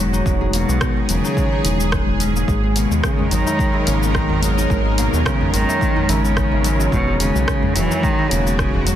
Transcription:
Already playing: E1 D#3 F#3 G#3 B3 D#4 F#4 G#4
0.00 G#2
0.13 D#4, shaker
0.26 E1 G#3 G#4, kick, shaker
0.41 G#4
0.53 B2 A#3, open hi-hat, shaker
0.69 B1 B3, shaker
0.81 D#3, kick, cross-stick, shaker
0.97 D#3
1.09 E1 C#3 F#3, open hi-hat, shaker
1.24 D#4, shaker
1.37 G#3, kick, shaker
1.52 D#4
1.65 E1 D#4, open hi-hat, shaker
1.80 G#3, shaker
1.92 kick, cross-stick, shaker
2.08 E1 G#3
2.20 G#2 C#4, open hi-hat, shaker
2.35 A#3, shaker
2.48 G#1 G#3 D#4 A#4, kick, shaker
2.63 G#4
2.76 B2 A#3, open hi-hat, shaker
2.91 D#2 G#3, shaker
3.04 C#3 D#3, kick, cross-stick, shaker
3.18 G#3, tabla ge
3.31 G#1 D#3 F#3, open hi-hat, shaker
3.46 D#4, tabla na, tabla tin, shaker
3.59 G#3, kick, shaker
3.74 G#4, tabla na, tabla tin
3.87 G#1 C#3 A#3, open hi-hat, shaker
4.02 B3, shaker
4.14 D#3 G#4, kick, cross-stick, shaker
4.29 G#1 G#3, tabla ge
4.42 G#2 F#3, open hi-hat, shaker
4.57 D#4, shaker
4.70 G#1 G#3 C#4, kick, shaker
4.85 G#4
4.98 B2 A#3, open hi-hat, shaker
5.13 D#2 B3, tabla na, shaker
5.26 C#3 D#3, kick, cross-stick, shaker
5.41 D#3, tabla ge
5.54 G#1 D#3 F#3, open hi-hat, shaker
5.68 D#4, tabla na, tabla tin, shaker
5.81 G#3, kick, tabla tin, shaker
5.96 D#4, tabla ge
6.09 G#1 C#3 D#3, open hi-hat, tabla na, tabla tin, shaker
6.24 B3, shaker
6.37 D#3, kick, cross-stick, shaker
6.52 G#1 D#3, tabla tin
6.64 F#3, open hi-hat, tabla na, shaker
6.79 F#4, tabla na, tabla tin, shaker
6.92 E1 B2 G#3 F#4, kick, shaker
7.07 G#4
7.20 C#3 A#3, open hi-hat, shaker
7.35 B1 G#3, shaker
7.48 D#3, kick, cross-stick, shaker
7.63 G#3, tabla ge
7.75 E1 E3 F#3, open hi-hat, shaker
7.90 D#4, tabla na, tabla tin, shaker
8.03 D#3 G#3, kick, shaker
8.18 G#4, tabla na, tabla tin
8.31 E1 C#3 A#3, open hi-hat, shaker
8.46 B3, shaker
8.59 G#4, kick, cross-stick, shaker
8.74 E1 G#3, tabla ge
8.87 G#2 F#3, open hi-hat, shaker

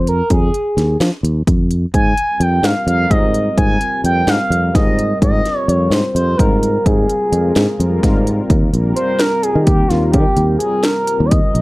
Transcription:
Already playing: F2
0.07 A#4, closed hi-hat
0.30 F2 G#4, kick, closed hi-hat
0.54 closed hi-hat
0.77 D#2, snare, closed hi-hat
1.00 F3, snare, closed hi-hat
1.23 D#2, closed hi-hat
1.47 F2, kick, closed hi-hat
1.71 closed hi-hat
1.94 G#2 G#5, kick, closed hi-hat
2.17 closed hi-hat
2.28 G3 C4 F4 A#4
2.40 F2 G5, closed hi-hat
2.63 G#2 F5, snare, closed hi-hat
2.87 F2 G3 C4 F4 A#4 F5, closed hi-hat
3.10 G#2 D#5, kick, closed hi-hat
3.34 closed hi-hat
3.45 G3 C4 F4 A#4
3.58 G#2 G#5, kick, closed hi-hat
3.81 closed hi-hat
3.92 G3 C4 F4 A#4
4.04 F2 G5, closed hi-hat
4.27 G#2 F5, snare, closed hi-hat
4.50 F2 G3 C4 F4 A#4, closed hi-hat
4.75 G#2 D#5, kick, snare, closed hi-hat
4.99 closed hi-hat
5.09 G3 C4 F4 A#4
5.22 G#2 D#5, kick, closed hi-hat
5.45 snare, closed hi-hat
5.56 G3 C4 F4 A#4 C#5
5.68 F2 C#5, closed hi-hat
5.90 G#2 C5, snare, closed hi-hat
6.14 F2 G3 C4 F4 A#4 C5, closed hi-hat
6.37 G#2 A#4, kick, closed hi-hat
6.63 closed hi-hat
6.73 G3 C4 F4 A#4
6.85 G#2 G#4, kick, closed hi-hat
7.09 closed hi-hat
7.20 G#3 C4 F4 A#4
7.32 F2, closed hi-hat
7.56 G#2, snare, closed hi-hat
7.77 F2 G3 C4 F4 A#4, closed hi-hat
8.03 G#2, kick, snare, closed hi-hat
8.27 closed hi-hat
8.37 G3 C4 F4 A#4
8.50 D#2, kick, closed hi-hat
8.72 A#1 G3 C4 F4 A#4, closed hi-hat
8.96 C5, closed hi-hat
9.19 A#4, snare, closed hi-hat
9.30 G3 C4 F4 A#4
9.42 G#4, closed hi-hat
9.55 D#3
9.64 D#2 G4, kick, closed hi-hat
9.77 G3 C4 F4 A#4
9.88 D#2 F4, snare, closed hi-hat
10.12 D#3 G4, kick, closed hi-hat
10.36 D#2 G3 C4 F4 A#4, closed hi-hat
10.58 G#4, closed hi-hat
10.83 A#4, snare, closed hi-hat
10.95 G3 C4 F4 A#4
11.07 closed hi-hat
11.20 D#2
11.26 D5
11.30 D#5, kick, closed hi-hat
11.42 G3 C4 F4 A#4
11.55 A#1, closed hi-hat

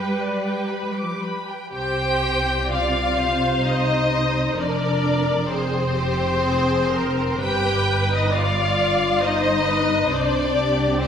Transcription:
Already playing: G3 G4 B4 G5
0.21 D5
0.45 G5
0.70 B5
0.83 G#3
0.94 G3 D6
1.03 F3
1.14 G3
1.21 B5
1.48 G5
1.71 C2 C3 G4 C5 G5
2.68 F4 D5 F5
3.18 C5
3.64 D#4 D#5
4.57 F1 F2 D4 A#4 D5
5.50 C4 G#4 C5
5.94 G4
6.42 G#4
6.91 A#4
7.39 G1 G2 G4 B4 G5
8.10 D#4 D#5
8.32 F4 D5 F5
9.22 D#4 C5 D#5
9.65 B4
10.09 C2 C3 D4 C5 D5
10.53 G4
10.98 C4 C5

